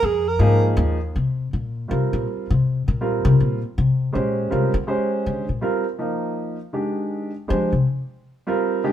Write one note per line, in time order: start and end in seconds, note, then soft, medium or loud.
0.03 0.39 F2 medium
0.03 0.30 G#4 loud
0.28 0.65 A#4 loud
0.39 0.76 G#2 medium
0.39 0.96 F3 medium
0.39 0.96 A#3 medium
0.39 0.96 D#4 medium
0.39 0.97 G#4 medium
0.77 1.13 D#2 loud
1.16 1.50 C3 medium
1.53 1.87 A#2 medium
1.88 2.12 C3 medium
1.88 2.45 G3 soft
1.88 2.45 C4 soft
1.88 2.45 F4 soft
1.88 2.46 A#4 soft
2.13 2.26 A#2 medium
2.50 2.85 C3 medium
2.88 3.22 A#2 medium
3.01 3.57 G3 soft
3.01 3.57 C4 soft
3.01 3.57 F4 soft
3.01 3.57 A#4 medium
3.25 3.38 C3 loud
3.40 3.62 A#2 medium
3.78 4.12 C3 medium
4.13 4.49 A#2 medium
4.13 4.69 G#3 medium
4.13 4.69 C#4 medium
4.13 4.69 G4 soft
4.13 4.69 C5 medium
4.50 4.73 C3 medium
4.50 4.71 G3 medium
4.50 4.72 C4 soft
4.50 4.72 F4 soft
4.50 4.72 A#4 medium
4.74 4.82 D3 medium
4.87 5.43 G#3 medium
4.87 5.44 C#4 medium
4.87 5.44 G4 medium
4.87 5.44 C5 medium
5.26 5.48 D3 medium
5.49 5.62 A#2 medium
5.61 5.83 G3 medium
5.61 5.83 C4 soft
5.61 5.83 F4 soft
5.61 5.84 A#4 medium
5.99 6.55 F3 soft
5.99 6.55 A#3 soft
5.99 6.55 D#4 soft
5.99 6.55 A#4 medium
6.73 7.29 D#3 soft
6.73 7.30 G#3 soft
6.73 7.30 D4 soft
6.73 7.30 G4 medium
7.48 7.72 F3 medium
7.48 7.69 G#3 soft
7.48 7.69 D4 soft
7.48 7.70 G4 soft
7.48 7.70 C5 medium
7.72 7.86 C3 medium
8.47 8.82 G3 medium
8.47 8.82 C4 medium
8.47 8.82 F4 medium
8.47 8.82 A#4 medium
8.84 8.92 D#3 medium
8.84 8.92 G#3 medium
8.84 8.92 D4 medium
8.84 8.92 G4 medium